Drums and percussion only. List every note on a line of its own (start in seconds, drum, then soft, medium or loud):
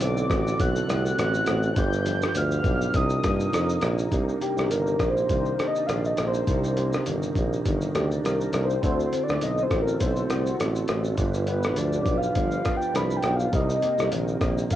0.00 closed hi-hat medium
0.00 shaker medium
0.17 shaker soft
0.30 kick loud
0.30 cross-stick medium
0.30 closed hi-hat soft
0.30 shaker soft
0.47 shaker soft
0.60 kick loud
0.60 closed hi-hat medium
0.60 shaker medium
0.76 shaker soft
0.89 cross-stick medium
0.89 closed hi-hat medium
0.89 shaker medium
1.06 shaker medium
1.19 cross-stick medium
1.19 closed hi-hat medium
1.19 shaker medium
1.34 shaker soft
1.46 cross-stick medium
1.46 closed hi-hat medium
1.46 shaker medium
1.63 shaker soft
1.76 kick loud
1.76 closed hi-hat medium
1.76 shaker medium
1.93 shaker medium
2.06 closed hi-hat soft
2.06 shaker medium
2.22 cross-stick medium
2.22 shaker medium
2.35 closed hi-hat medium
2.35 shaker medium
2.51 shaker medium
2.64 kick medium
2.64 closed hi-hat soft
2.64 shaker medium
2.81 shaker medium
2.94 kick loud
2.94 closed hi-hat medium
2.94 shaker medium
3.10 shaker soft
3.24 kick medium
3.24 cross-stick medium
3.24 closed hi-hat medium
3.24 shaker medium
3.40 shaker soft
3.53 cross-stick medium
3.53 closed hi-hat medium
3.53 shaker medium
3.69 shaker medium
3.81 cross-stick loud
3.81 closed hi-hat medium
3.81 shaker medium
3.98 shaker medium
4.12 kick loud
4.12 closed hi-hat medium
4.12 shaker medium
4.29 shaker medium
4.41 closed hi-hat soft
4.41 shaker soft
4.57 cross-stick medium
4.57 shaker medium
4.71 closed hi-hat medium
4.71 shaker medium
4.87 shaker soft
4.99 kick medium
4.99 cross-stick medium
4.99 closed hi-hat soft
4.99 shaker soft
5.17 shaker soft
5.29 kick medium
5.29 closed hi-hat medium
5.29 shaker medium
5.45 shaker soft
5.59 cross-stick medium
5.59 closed hi-hat medium
5.59 shaker medium
5.75 shaker soft
5.89 cross-stick medium
5.89 closed hi-hat medium
5.89 shaker medium
6.04 shaker soft
6.17 cross-stick medium
6.17 closed hi-hat medium
6.17 shaker medium
6.34 shaker soft
6.47 kick loud
6.47 closed hi-hat medium
6.47 shaker medium
6.64 shaker soft
6.77 closed hi-hat soft
6.77 shaker soft
6.93 cross-stick medium
6.93 shaker soft
7.06 closed hi-hat medium
7.06 shaker medium
7.22 shaker soft
7.35 kick medium
7.35 closed hi-hat soft
7.35 shaker soft
7.53 shaker soft
7.65 kick medium
7.65 closed hi-hat medium
7.65 shaker medium
7.81 shaker soft
7.95 cross-stick medium
7.95 closed hi-hat medium
7.95 shaker medium
8.11 shaker soft
8.25 cross-stick medium
8.25 closed hi-hat medium
8.25 shaker medium
8.41 shaker soft
8.53 cross-stick medium
8.53 closed hi-hat medium
8.53 shaker medium
8.70 shaker soft
8.83 kick loud
8.83 closed hi-hat medium
8.83 shaker medium
9.00 shaker soft
9.13 closed hi-hat soft
9.13 shaker soft
9.28 cross-stick medium
9.28 shaker soft
9.41 closed hi-hat medium
9.41 shaker medium
9.58 shaker soft
9.71 kick medium
9.71 cross-stick medium
9.71 closed hi-hat soft
9.71 shaker soft
9.88 shaker soft
10.00 kick medium
10.00 closed hi-hat medium
10.00 shaker medium
10.16 shaker soft
10.30 cross-stick medium
10.30 closed hi-hat medium
10.30 shaker medium
10.46 shaker soft
10.60 cross-stick medium
10.60 closed hi-hat medium
10.60 shaker medium
10.75 shaker soft
10.88 cross-stick medium
10.88 closed hi-hat medium
10.88 shaker medium
11.04 shaker soft
11.18 kick loud
11.18 closed hi-hat medium
11.18 shaker medium
11.34 shaker medium
11.47 closed hi-hat soft
11.47 shaker soft
11.63 cross-stick medium
11.63 shaker medium
11.76 closed hi-hat medium
11.76 shaker medium
11.93 shaker soft
12.06 kick loud
12.06 closed hi-hat medium
12.06 shaker soft
12.23 shaker medium
12.35 kick medium
12.35 closed hi-hat medium
12.35 shaker medium
12.51 shaker soft
12.65 kick medium
12.65 cross-stick medium
12.65 closed hi-hat medium
12.65 shaker medium
12.82 shaker soft
12.95 cross-stick medium
12.95 closed hi-hat medium
12.95 shaker medium
13.10 shaker soft
13.23 cross-stick medium
13.23 closed hi-hat medium
13.23 shaker medium
13.40 shaker medium
13.53 kick loud
13.53 closed hi-hat medium
13.53 shaker medium
13.69 shaker medium
13.82 closed hi-hat soft
13.82 shaker soft
13.98 cross-stick medium
13.98 shaker soft
14.12 closed hi-hat medium
14.12 shaker medium
14.28 shaker soft
14.41 kick medium
14.41 cross-stick medium
14.41 closed hi-hat soft
14.41 shaker soft
14.58 shaker soft
14.71 kick medium
14.71 closed hi-hat medium
14.71 shaker medium